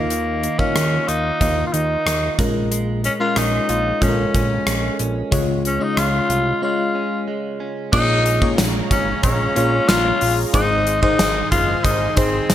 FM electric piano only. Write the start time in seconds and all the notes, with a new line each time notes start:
Already playing: D#3 A#3 D#4 F4 D#5
0.59 A#3 D#4 F4 F5
1.40 A#3 D#4 F4 D#5
2.38 A#2 G#3 C#4 F4 A#4
3.20 G#3 C#4 F4 A#4
4.01 G#3 C#4 F4 A4
4.09 A#4
5.31 C#3 G#3 C#4 F4 C#5
5.80 G#3 C#4 F4 D#5
6.62 G#3 C#4 F4 C#5
7.93 A#2 A#3 C#4 F4 G#4 C#5
8.41 A#3 C#4 F4 G#4 C#5
9.56 A#3 C#4 F4 G#4 C#5
10.53 G#2 D#4 G#4 C5
11.02 D#4 G#4 C5
12.16 D#4 G#4 C5